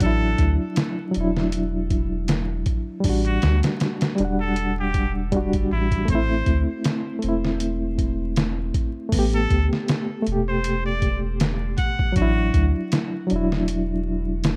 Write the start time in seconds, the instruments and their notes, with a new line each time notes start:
Already playing: reed electric piano F#3
0.00 sub bass A1, reed electric piano D4, muted trumpet A4, kick, closed hi-hat
0.06 reed electric piano E4
0.38 sub bass D2, kick, closed hi-hat
0.76 snare, closed hi-hat
1.11 reed electric piano F#3, closed hi-hat
1.16 sub bass E1, reed electric piano D4
1.21 reed electric piano E4
1.36 snare
1.52 closed hi-hat
1.90 kick, closed hi-hat
2.28 snare, closed hi-hat
2.66 kick, closed hi-hat
3.00 reed electric piano G3, kick, open hi-hat
3.05 sub bass A1, reed electric piano D4
3.09 reed electric piano F#4
3.25 muted trumpet F#4, closed hi-hat
3.42 sub bass D2, snare, closed hi-hat
3.63 snare, closed hi-hat
3.80 snare, closed hi-hat
4.01 snare, closed hi-hat
4.15 sub bass E1, reed electric piano G3, closed hi-hat
4.20 reed electric piano D4
4.25 reed electric piano F#5
4.41 muted trumpet A4
4.56 closed hi-hat
4.80 muted trumpet G4
4.94 kick, closed hi-hat
5.32 reed electric piano G3 D4, kick, closed hi-hat
5.36 reed electric piano F#4
5.53 sub bass G1, kick, closed hi-hat
5.72 sub bass A1, muted trumpet E4
5.92 kick, closed hi-hat
6.05 sub bass A1, reed electric piano A3, kick, closed hi-hat
6.10 reed electric piano C4, muted trumpet C5
6.15 reed electric piano E4
6.46 sub bass D2, kick, closed hi-hat
6.84 snare, closed hi-hat
7.19 reed electric piano A3, closed hi-hat
7.23 sub bass E1, reed electric piano C4
7.29 reed electric piano E4
7.45 snare
7.60 closed hi-hat
7.98 kick, closed hi-hat
8.36 snare, closed hi-hat
8.74 kick, closed hi-hat
9.09 sub bass A1, reed electric piano A3, kick, open hi-hat
9.14 reed electric piano B3
9.19 reed electric piano G4
9.33 muted trumpet A4, closed hi-hat
9.50 sub bass D2, kick, closed hi-hat
9.73 snare
9.88 snare, closed hi-hat
10.23 reed electric piano A3, closed hi-hat
10.27 sub bass E1, reed electric piano B2
10.32 reed electric piano G4
10.48 muted trumpet C5
10.64 closed hi-hat
10.86 muted trumpet D5
11.02 kick, closed hi-hat
11.40 snare, closed hi-hat
11.78 muted trumpet F#5, kick, closed hi-hat
11.99 kick
12.12 reed electric piano F#3, kick, closed hi-hat
12.16 sub bass A1, reed electric piano D4, muted trumpet F#4
12.22 reed electric piano E4
12.54 sub bass D2, kick, closed hi-hat
12.92 snare, closed hi-hat
13.27 reed electric piano F#3, closed hi-hat
13.31 sub bass E1, reed electric piano D4
13.36 reed electric piano E4
13.52 snare
13.68 closed hi-hat
14.44 snare, closed hi-hat